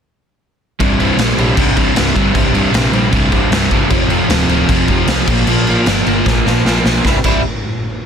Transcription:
0.80 1.08 C1 medium
0.80 0.99 C2 loud
0.80 0.99 G2 loud
0.80 1.00 C3 loud
0.80 kick loud
0.80 crash medium
0.99 1.18 C2 medium
0.99 1.18 G2 medium
0.99 1.19 C3 medium
0.99 crash medium
1.17 1.32 A#1 medium
1.17 1.38 C2 loud
1.17 1.38 G2 loud
1.17 1.39 C3 loud
1.17 snare loud
1.17 crash medium
1.37 1.52 A#1 medium
1.37 1.55 C2 medium
1.37 1.56 G2 medium
1.37 1.56 C3 medium
1.37 crash medium
1.57 1.72 C1 medium
1.57 1.76 C2 loud
1.57 1.76 G2 loud
1.57 1.76 C3 loud
1.57 kick loud
1.57 crash medium
1.76 1.91 C1 loud
1.76 1.95 C2 medium
1.76 1.95 G2 medium
1.76 1.96 C3 loud
1.76 kick loud
1.76 crash medium
1.96 2.11 C1 medium
1.96 2.15 C2 medium
1.96 2.15 G2 medium
1.96 2.15 C3 loud
1.96 snare loud
1.96 crash medium
2.15 2.30 G1 medium
2.15 2.33 C2 medium
2.15 2.34 G2 medium
2.15 2.34 C3 medium
2.15 kick medium
2.15 crash medium
2.34 2.63 C1 medium
2.34 2.53 C2 loud
2.34 2.54 G2 medium
2.34 2.54 C3 loud
2.34 kick loud
2.34 crash medium
2.54 2.71 C2 medium
2.54 2.72 G2 medium
2.54 2.72 C3 medium
2.54 crash medium
2.73 2.88 A#1 medium
2.73 2.92 C2 medium
2.73 2.92 G2 loud
2.73 2.92 C3 loud
2.73 snare loud
2.73 crash medium
2.93 3.08 A#1 medium
2.93 3.10 C2 medium
2.93 3.11 G2 medium
2.93 3.11 C3 medium
2.93 crash medium
3.12 3.27 C1 medium
3.12 3.30 C2 loud
3.12 3.31 G2 loud
3.12 3.31 C3 loud
3.12 kick loud
3.12 crash medium
3.31 3.46 C1 loud
3.31 3.50 C2 medium
3.31 3.50 G2 medium
3.31 3.51 C3 medium
3.31 kick medium
3.31 crash medium
3.51 3.66 C1 medium
3.51 3.70 C2 loud
3.51 3.70 G2 medium
3.51 3.71 C3 loud
3.51 snare loud
3.51 crash medium
3.71 3.85 G1 medium
3.71 3.90 C2 medium
3.71 3.90 G2 medium
3.71 3.90 C3 loud
3.71 kick medium
3.71 crash medium
3.90 4.19 F1 medium
3.90 4.08 F2 medium
3.90 4.09 C3 loud
3.90 4.10 F3 loud
3.90 kick loud
3.90 crash medium
4.10 4.28 F2 medium
4.10 4.29 C3 medium
4.10 4.30 F3 loud
4.10 crash medium
4.29 4.44 D1 medium
4.29 4.48 F2 loud
4.29 4.49 C3 loud
4.29 4.50 F3 loud
4.29 snare loud
4.29 crash medium
4.48 4.63 D1 medium
4.48 4.68 F2 medium
4.48 4.68 C3 medium
4.48 4.69 F3 medium
4.48 crash medium
4.69 4.83 F1 medium
4.69 4.89 F2 loud
4.69 4.89 C3 loud
4.69 4.90 F3 loud
4.69 kick loud
4.69 crash medium
4.88 5.03 F1 medium
4.88 5.08 F2 medium
4.88 5.08 C3 medium
4.88 5.09 F3 medium
4.88 kick medium
4.88 crash medium
5.06 5.21 C2 loud
5.06 5.27 F2 medium
5.06 5.28 C3 loud
5.06 5.27 F3 loud
5.06 snare loud
5.06 crash medium
5.27 5.42 A#1 medium
5.27 5.47 A#2 loud
5.27 5.48 F3 loud
5.27 5.48 A#3 loud
5.27 kick loud
5.27 crash loud
5.47 5.76 A#1 medium
5.47 5.67 A#2 loud
5.47 5.67 F3 loud
5.47 5.68 A#3 loud
5.47 crash medium
5.67 5.86 A#2 medium
5.67 5.86 F3 medium
5.67 5.87 A#3 medium
5.67 crash medium
5.86 6.01 G1 medium
5.86 6.05 A#2 loud
5.86 6.05 F3 loud
5.86 6.06 A#3 loud
5.86 snare loud
5.86 crash medium
6.06 6.21 G1 medium
6.06 6.24 A#2 medium
6.06 6.25 F3 medium
6.06 6.26 A#3 medium
6.06 crash medium
6.26 6.40 A#1 medium
6.26 6.45 A#2 loud
6.26 6.45 F3 loud
6.26 6.46 A#3 loud
6.26 kick loud
6.26 snare medium
6.45 6.60 A#1 medium
6.45 6.65 A#2 medium
6.45 6.65 F3 medium
6.45 6.65 A#3 medium
6.45 snare medium
6.64 6.79 A#1 medium
6.64 6.84 A#2 medium
6.64 6.84 F3 medium
6.64 6.85 A#3 medium
6.64 snare medium
6.85 6.99 B1 medium
6.85 7.04 A#2 medium
6.85 7.04 F3 medium
6.85 7.04 A#3 medium
6.85 snare medium
7.04 7.15 C1 medium
7.04 7.16 C2 medium
7.04 7.17 G2 loud
7.04 7.17 C3 loud
7.04 7.17 G3 medium
7.04 7.17 E4 loud
7.04 kick loud
7.04 snare medium
7.24 7.42 C1 loud
7.24 7.40 C2 medium
7.24 7.40 G2 loud
7.24 7.40 C3 loud
7.24 7.40 G3 loud
7.24 7.41 E4 loud
7.24 kick loud
7.24 crash medium

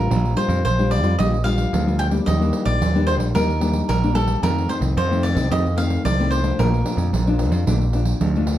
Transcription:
0.00 0.32 G3 medium
0.00 0.32 D4 medium
0.00 0.32 F4 medium
0.00 0.34 A#4 medium
0.10 0.34 A#1 medium
0.10 0.62 A#2 soft
0.10 pandeiro medium
0.25 pandeiro soft
0.36 0.62 G3 medium
0.36 0.63 D4 medium
0.36 0.63 F4 medium
0.36 0.64 C5 medium
0.36 pandeiro medium
0.49 0.61 F2 medium
0.49 pandeiro medium
0.65 1.03 A#1 medium
0.65 1.16 F3 medium
0.65 0.90 C5 medium
0.65 pandeiro medium
0.79 1.01 G3 medium
0.79 1.02 D4 medium
0.79 1.02 F4 medium
0.79 pandeiro soft
0.91 1.18 D5 medium
0.91 pandeiro medium
1.03 1.15 F2 medium
1.03 1.13 G3 medium
1.03 1.14 D4 medium
1.03 1.14 F4 medium
1.03 pandeiro medium
1.18 1.65 A#1 medium
1.18 1.70 A#2 medium
1.18 1.35 G3 medium
1.18 1.35 D4 medium
1.18 1.35 F4 medium
1.18 1.44 D#5 medium
1.18 pandeiro medium
1.34 pandeiro soft
1.44 1.81 G3 medium
1.44 1.82 D4 medium
1.44 1.82 F4 medium
1.44 1.95 F5 medium
1.44 pandeiro medium
1.58 pandeiro medium
1.73 2.19 D2 medium
1.73 2.24 F3 soft
1.73 pandeiro medium
1.87 2.09 G3 medium
1.87 2.09 D4 medium
1.87 2.10 F4 medium
1.87 pandeiro soft
1.99 2.06 G5 medium
1.99 pandeiro medium
2.11 2.39 G3 medium
2.11 2.40 A#3 medium
2.11 2.40 D4 medium
2.11 pandeiro medium
2.26 2.50 D#2 medium
2.26 2.78 D#3 soft
2.26 2.64 D#5 medium
2.26 pandeiro medium
2.41 2.90 G3 medium
2.41 2.91 A#3 medium
2.41 2.91 D4 medium
2.41 pandeiro soft
2.53 pandeiro medium
2.65 2.78 A#1 medium
2.65 3.04 D5 medium
2.65 pandeiro medium
2.81 3.19 D#2 medium
2.81 3.32 A#2 medium
2.81 pandeiro medium
2.95 3.31 G3 medium
2.95 3.31 A#3 medium
2.95 3.32 D4 medium
2.95 pandeiro soft
3.07 3.14 C5 medium
3.07 pandeiro medium
3.19 3.32 A#1 medium
3.19 pandeiro medium
3.34 3.81 D#2 medium
3.34 3.86 D#3 medium
3.34 3.51 G3 medium
3.34 3.51 A#3 medium
3.34 3.51 D4 medium
3.34 3.88 A#4 medium
3.34 pandeiro medium
3.50 pandeiro soft
3.60 3.97 G3 medium
3.60 3.98 A#3 medium
3.60 3.98 D4 medium
3.60 pandeiro medium
3.73 pandeiro medium
3.89 4.35 A#1 medium
3.89 4.41 A#2 medium
3.89 4.15 A#4 medium
3.89 pandeiro medium
4.03 4.12 G3 medium
4.03 4.12 A#3 medium
4.03 4.12 D4 medium
4.03 pandeiro soft
4.14 4.40 G3 medium
4.14 4.41 A#3 medium
4.14 4.41 D4 medium
4.14 4.41 A4 medium
4.14 pandeiro medium
4.27 pandeiro medium
4.43 4.94 F2 medium
4.43 4.66 F2 medium
4.43 4.66 D#3 medium
4.43 4.66 A3 soft
4.43 4.66 C4 medium
4.43 4.68 A#4 medium
4.43 pandeiro medium
4.58 pandeiro soft
4.68 4.95 D#3 medium
4.68 4.95 A3 medium
4.68 4.95 C4 medium
4.68 4.77 C5 medium
4.68 pandeiro medium
4.81 4.94 C2 medium
4.81 pandeiro medium
4.96 5.37 F2 medium
4.96 5.48 C3 medium
4.96 5.23 C5 medium
4.96 pandeiro medium
5.10 5.33 D#3 medium
5.10 5.34 A3 medium
5.10 5.34 C4 medium
5.10 pandeiro soft
5.23 5.51 D5 medium
5.23 pandeiro medium
5.35 5.48 C2 medium
5.35 5.46 D#3 medium
5.35 5.46 A3 medium
5.35 5.46 C4 medium
5.35 pandeiro medium
5.50 6.02 F2 medium
5.50 5.97 F2 medium
5.50 5.67 D#3 medium
5.50 5.67 A3 medium
5.50 5.67 C4 medium
5.50 5.77 D#5 medium
5.50 pandeiro medium
5.67 pandeiro soft
5.76 6.14 D#3 medium
5.76 6.14 A3 medium
5.76 6.14 C4 medium
5.76 6.05 F5 medium
5.76 pandeiro medium
5.90 pandeiro medium
6.05 6.51 C2 medium
6.05 6.56 C3 medium
6.05 6.30 D5 medium
6.05 pandeiro medium
6.19 6.42 D#3 medium
6.19 6.42 A3 medium
6.19 6.42 C4 medium
6.19 pandeiro soft
6.31 6.59 C5 medium
6.31 pandeiro medium
6.43 6.81 F3 medium
6.43 6.81 A3 medium
6.43 6.81 D4 medium
6.43 pandeiro medium
6.59 6.82 A#1 medium
6.59 7.11 A#2 medium
6.59 8.44 A#4 medium
6.59 pandeiro medium
6.74 pandeiro soft
6.85 7.11 F3 medium
6.85 7.11 A3 medium
6.85 7.11 D4 medium
6.85 pandeiro medium
6.97 7.10 F2 medium
6.97 pandeiro medium
7.13 7.51 A#1 medium
7.13 7.65 F2 medium
7.13 pandeiro medium
7.27 7.63 F3 medium
7.27 7.64 D4 medium
7.27 pandeiro soft
7.39 pandeiro medium
7.51 7.64 F2 medium
7.51 pandeiro medium
7.67 8.13 A#1 medium
7.67 8.19 A#2 medium
7.67 7.83 F3 medium
7.67 7.83 A3 medium
7.67 7.84 D4 medium
7.67 pandeiro medium
7.81 pandeiro soft
7.93 8.30 F3 soft
7.93 8.31 D4 medium
7.93 pandeiro medium
8.05 pandeiro medium
8.21 8.58 D2 medium
8.21 8.58 F2 medium
8.21 pandeiro medium
8.36 8.58 F3 medium
8.36 8.58 A3 medium
8.36 8.58 D4 medium
8.36 pandeiro soft
8.47 pandeiro medium

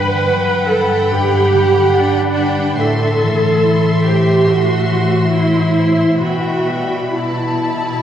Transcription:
0.00 1.10 G2 medium
0.00 2.77 G2 medium
0.00 1.52 D3 soft
0.00 0.67 B4 medium
0.00 0.69 B4 soft
0.00 2.77 F#5 medium
0.00 2.77 G5 medium
0.00 2.77 B5 medium
0.29 2.84 F#3 soft
0.69 1.11 A4 medium
0.69 2.37 B4 soft
1.11 2.84 G2 soft
1.11 1.95 G4 medium
1.53 2.84 D3 soft
1.95 2.84 D4 soft
1.95 2.81 D4 medium
2.38 2.84 B4 soft
2.80 6.17 A2 medium
2.80 4.47 A2 soft
2.80 4.04 A4 medium
2.80 6.17 E5 medium
2.80 6.18 C6 medium
3.23 4.89 E3 soft
3.64 5.33 E4 soft
4.05 4.49 G4 medium
4.05 5.75 C5 soft
4.48 6.25 A2 soft
4.48 5.34 F#4 medium
4.91 6.25 E3 soft
5.33 6.21 E4 medium
5.33 7.11 E4 soft
5.76 6.25 C5 soft
6.21 8.02 B2 soft
6.21 7.09 F#4 medium
6.21 7.01 E5 soft
6.21 7.01 G5 soft
6.21 8.02 B5 soft
6.66 8.02 G3 soft
7.12 8.02 E4 soft
7.12 8.02 E4 medium
7.12 8.02 A5 medium

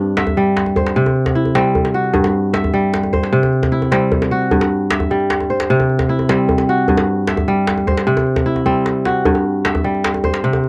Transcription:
0.00 1.01 G2 medium
0.00 0.99 C4 medium
0.00 1.27 D4 medium
0.17 1.20 E5 medium
0.17 djembe slap medium
0.27 djembe slap soft
0.27 djembe tone medium
0.27 djembe bass soft
0.37 1.01 G3 medium
0.37 djembe slap soft
0.47 djembe slap soft
0.57 djembe slap medium
0.66 djembe tone soft
0.76 1.95 C5 medium
0.76 djembe bass medium
0.86 djembe slap medium
0.96 2.19 C3 medium
1.06 djembe slap soft
1.06 djembe tone medium
1.16 djembe slap soft
1.26 djembe slap medium
1.26 djembe bass soft
1.35 2.92 E4 medium
1.45 djembe slap soft
1.45 djembe tone soft
1.55 2.19 G3 medium
1.55 3.35 C4 medium
1.55 djembe slap medium
1.75 djembe bass medium
1.85 djembe slap soft
1.85 djembe tone soft
1.94 2.80 F#4 medium
2.04 djembe slap soft
2.13 3.38 G2 medium
2.13 djembe bass medium
2.24 djembe slap soft
2.24 djembe tone soft
2.53 3.57 E5 medium
2.53 djembe slap medium
2.64 djembe slap soft
2.64 djembe tone soft
2.64 djembe bass soft
2.74 3.38 G3 medium
2.74 djembe slap soft
2.84 djembe slap soft
2.94 djembe slap medium
3.03 djembe tone soft
3.13 4.32 C5 medium
3.13 djembe bass medium
3.23 djembe slap medium
3.33 4.56 C3 medium
3.43 djembe slap soft
3.43 djembe tone medium
3.53 djembe slap soft
3.63 djembe slap medium
3.63 djembe bass medium
3.72 5.29 E4 medium
3.82 djembe slap soft
3.82 djembe tone soft
3.91 4.56 G3 medium
3.91 5.71 C4 medium
3.91 djembe slap medium
4.12 djembe bass medium
4.22 djembe slap medium
4.22 djembe tone soft
4.31 5.17 F#4 medium
4.42 djembe slap soft
4.51 5.75 G2 medium
4.51 djembe bass medium
4.61 djembe slap medium
4.61 djembe tone medium
4.91 5.94 E5 medium
4.91 djembe slap medium
5.00 djembe slap soft
5.00 djembe tone medium
5.00 djembe bass medium
5.10 5.75 G3 medium
5.10 djembe slap soft
5.20 djembe slap soft
5.30 djembe slap medium
5.40 djembe tone soft
5.50 6.69 C5 medium
5.60 djembe slap medium
5.70 6.93 C3 loud
5.80 djembe tone medium
5.89 djembe slap soft
5.99 djembe slap soft
5.99 djembe bass medium
6.09 7.66 E4 medium
6.19 djembe slap soft
6.19 djembe tone soft
6.29 6.93 G3 medium
6.29 8.09 C4 medium
6.29 djembe slap medium
6.49 djembe bass medium
6.58 djembe slap soft
6.58 djembe tone soft
6.69 7.54 F#4 medium
6.78 djembe slap soft
6.88 8.12 G2 medium
6.88 djembe bass medium
6.98 djembe slap medium
6.98 djembe tone medium
7.27 8.31 E5 medium
7.27 djembe slap medium
7.37 djembe slap soft
7.37 djembe tone medium
7.37 djembe bass medium
7.48 8.12 G3 medium
7.67 djembe slap medium
7.78 djembe tone soft
7.87 9.06 C5 medium
7.87 djembe slap soft
7.87 djembe bass medium
7.97 djembe slap medium
8.07 9.30 C3 medium
8.17 djembe slap soft
8.17 djembe tone medium
8.27 djembe slap soft
8.36 djembe slap soft
8.36 djembe bass medium
8.46 10.03 E4 medium
8.46 djembe slap soft
8.56 djembe tone soft
8.66 9.30 G3 medium
8.66 10.46 C4 medium
8.66 djembe bass soft
8.86 djembe slap medium
9.05 9.90 F#4 medium
9.05 djembe slap medium
9.25 10.49 G2 medium
9.25 djembe bass medium
9.35 djembe tone medium
9.65 10.69 E5 medium
9.65 djembe slap medium
9.75 djembe slap soft
9.75 djembe tone medium
9.75 djembe bass medium
9.84 10.49 G3 medium
9.84 djembe slap soft
9.95 djembe slap soft
10.04 djembe slap medium
10.14 djembe tone medium
10.24 10.69 C5 medium
10.24 djembe bass medium
10.34 djembe slap medium
10.44 10.69 C3 medium
10.53 djembe slap soft
10.53 djembe tone medium
10.64 djembe slap soft

